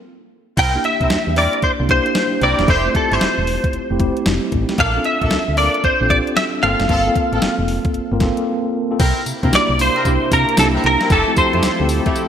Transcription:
0.57 C2 C4 E4 A#4 G5, kick, closed hi-hat, crash
0.74 A#3 D4 E4 G4
0.84 E5, closed hi-hat
1.00 C2 C4 E4 A#4, kick, closed hi-hat
1.10 snare, closed hi-hat
1.27 E2
1.36 C4 E4 A#4 D5, open hi-hat
1.53 closed hi-hat
1.62 C2 C5, kick, closed hi-hat
1.80 C2 A#3 D4 E4 G4
1.89 A#3 D4 E4 G4 C5, kick, closed hi-hat
2.06 closed hi-hat
2.15 snare, closed hi-hat
2.41 C2 C4 E4 A#4 D5, closed hi-hat
2.59 E1 A#3 D4 E4 G4, snare, closed hi-hat
2.67 F1 A3 E4 G4 C5, kick, closed hi-hat
2.86 A3 C4 E4 F4
2.93 G4 A4, kick, closed hi-hat
3.11 G1 A3 E4 G4 C5, closed hi-hat
3.21 snare, closed hi-hat
3.38 E1
3.47 open hi-hat
3.64 kick, closed hi-hat
3.73 F1, closed hi-hat
3.90 F1 A3 C4 E4 G4
4.00 A3 C4 E4 G4, kick, closed hi-hat
4.17 closed hi-hat
4.26 F1, snare, closed hi-hat
4.52 A1, kick, closed hi-hat
4.69 A3 C4 E4 G4, snare, closed hi-hat
4.78 A#1 A#3 D4 A4 F5, kick, closed hi-hat
4.95 C4 D4 F4 A4
5.04 E5, closed hi-hat
5.22 A#1 A#3 D4 A4, kick, closed hi-hat
5.31 D2, snare, closed hi-hat
5.48 D2
5.57 A#3 D4 A4 D5, open hi-hat
5.74 closed hi-hat
5.84 A#1 C5, kick, closed hi-hat
6.01 A#1 C4 D4 F4 A4
6.10 C4 F4 G4 D5, kick, closed hi-hat
6.27 closed hi-hat
6.37 E5, snare, closed hi-hat
6.62 G1 A#3 C4 F4 A4 F5, closed hi-hat
6.80 F#1, snare, closed hi-hat
6.89 G1 A#3 C4 F4 A4, kick, closed hi-hat
7.06 A#3 C4 F4 A4
7.16 kick, closed hi-hat
7.32 A1 A#3 C4 F4 A4, closed hi-hat
7.42 snare, closed hi-hat
7.59 F1
7.68 open hi-hat
7.85 kick, closed hi-hat
7.94 G1, closed hi-hat
8.12 G1 A#3 C4 F4 A#4
8.20 A#3 C4 F4 A4, kick, snare, closed hi-hat
8.37 closed hi-hat
8.91 A#3 C4 F4 A4
8.99 C2 C3 A#3 C4 E4 A#4, kick, closed hi-hat, crash, tambourine
9.26 C3, closed hi-hat, tambourine
9.43 C3 A#3 C4 D4 E4 F#4 A#4, kick, closed hi-hat
9.50 C2 G4, snare, closed hi-hat, tambourine
9.55 D5
9.69 C2
9.79 C5, open hi-hat, tambourine
9.95 C4 E4 A#4, closed hi-hat
10.05 C2 A#3 D4 E4 G4, kick, closed hi-hat, tambourine
10.32 C3 A#4, kick, closed hi-hat, tambourine
10.49 closed hi-hat
10.57 C2 A#3 D4 E4 G4 A4, snare, closed hi-hat, tambourine
10.74 C4 E4 A#4
10.84 C2 A#4, closed hi-hat
11.01 C4 E4 A#4, snare, closed hi-hat
11.10 F1 F3 A3 E4 G4 A4, kick, closed hi-hat, tambourine
11.27 A3 C4 E4 F#4
11.35 F2 G4 C5, kick, closed hi-hat, tambourine
11.53 F2 A3 E4 G4, closed hi-hat
11.63 D2, snare, closed hi-hat, tambourine
11.80 D2 A3 C4 E4 G4
11.89 open hi-hat, tambourine
12.06 A3 E4 G4, kick, closed hi-hat
12.16 closed hi-hat, tambourine

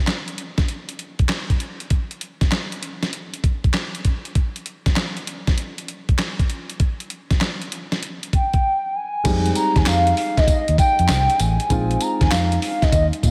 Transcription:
0.07 snare, clap, closed hi-hat
0.28 closed hi-hat
0.38 closed hi-hat
0.58 kick, snare, closed hi-hat
0.68 closed hi-hat
0.89 closed hi-hat
0.99 closed hi-hat
1.19 kick, closed hi-hat
1.29 snare, clap, closed hi-hat
1.50 kick, closed hi-hat
1.60 closed hi-hat
1.80 closed hi-hat
1.90 kick, closed hi-hat
2.11 closed hi-hat
2.21 closed hi-hat
2.41 kick, snare, closed hi-hat
2.52 snare, clap, closed hi-hat
2.72 closed hi-hat
2.83 closed hi-hat
3.03 snare, closed hi-hat
3.13 closed hi-hat
3.34 closed hi-hat
3.44 kick, closed hi-hat
3.64 kick, closed hi-hat
3.74 snare, clap, closed hi-hat
3.95 closed hi-hat
4.05 kick, closed hi-hat
4.25 closed hi-hat
4.35 kick, closed hi-hat
4.56 closed hi-hat
4.66 closed hi-hat
4.86 kick, snare, closed hi-hat
4.96 snare, clap, closed hi-hat
5.17 closed hi-hat
5.27 closed hi-hat
5.47 kick, snare, closed hi-hat
5.58 closed hi-hat
5.78 closed hi-hat
5.88 closed hi-hat
6.09 kick, closed hi-hat
6.18 snare, clap, closed hi-hat
6.39 kick, closed hi-hat
6.50 closed hi-hat
6.70 closed hi-hat
6.80 kick, closed hi-hat
7.00 closed hi-hat
7.10 closed hi-hat
7.31 kick, snare, closed hi-hat
7.41 snare, clap, closed hi-hat
7.62 closed hi-hat
7.72 closed hi-hat
7.92 snare, closed hi-hat
8.03 closed hi-hat
8.23 closed hi-hat
8.33 G5, kick, closed hi-hat
8.53 kick, closed hi-hat
8.95 G#5
9.24 F2 G3 G#3 C4 D#4, kick, closed hi-hat, crash, tambourine
9.46 closed hi-hat
9.55 A#5, closed hi-hat, tambourine
9.76 D#2 G#5, kick, snare, closed hi-hat
9.86 F2 F5, snare, clap, closed hi-hat, tambourine
10.07 closed hi-hat
10.17 F5, open hi-hat
10.37 D#5, kick, snare, closed hi-hat
10.47 D#5, muted fingered electric bass stroke, kick, closed hi-hat, tambourine
10.68 D#2, closed hi-hat
10.78 G5, kick, closed hi-hat, tambourine
10.99 F2, closed hi-hat
11.08 C2, snare, clap, closed hi-hat, tambourine
11.30 closed hi-hat
11.39 A1 G#5, closed hi-hat, tambourine
11.60 closed hi-hat
11.69 A#1 G#3 C4 D#4 F4, kick, closed hi-hat, tambourine
11.91 closed hi-hat
12.01 A#5, closed hi-hat, tambourine
12.21 D#2 G#5, kick, snare, closed hi-hat
12.31 F2 F5, snare, clap, closed hi-hat, tambourine
12.52 closed hi-hat
12.62 F5, open hi-hat
12.82 D#5, kick, snare, closed hi-hat
12.92 D#2 D#5, kick, closed hi-hat, tambourine
13.13 closed hi-hat
13.23 A#2 F5, kick, closed hi-hat, tambourine

